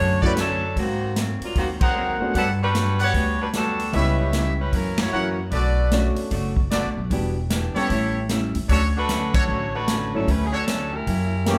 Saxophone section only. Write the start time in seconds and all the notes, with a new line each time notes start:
Already playing: A3 D4 F#4 C#5
0.25 G3 C#4 E4 B4
0.39 F#3 C#4 D4 A4
0.78 D#3 A#3 C4 F#4
1.43 F#3 A#3 D4 F4
1.57 D#3 A#3 C4 F#4
1.82 F#3 C4 D#4 A#4
2.36 F#3 B3 D4 A4
2.62 G3 D4 F#4 B4
3.02 B3 F#4 G4 C#5
3.41 G3 D4 F#4 B4
3.55 G3 D4 F#4 A4
3.94 G3 C#4 E4 B4
4.60 G3 C#4 E4 B4
4.74 F#3 C#4 E4 A#4
5.01 A#3 E4 F#4 C#5
8.70 F#3 C#4 D4 A4
8.96 A3 D4 F#4 B4
9.35 A3 D4 F#4 C#5
9.74 A3 D4 F#4 B4
10.15 F#3 C#4 D4 A4
10.29 G3 C#4 E4 B4
10.45 G#4
10.53 F#3 C#4 D4 A4
10.94 C#4 E4 G4 A#4